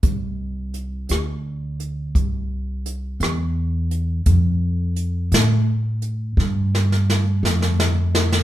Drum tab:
HH |x---x-x---x-x---x-x---x-|x---x-x---x-------------|
SD |------r-----------r-----|------o-----o-ooo-ooo-oo|
BD |o-----------o-----------|o-----------o-----------|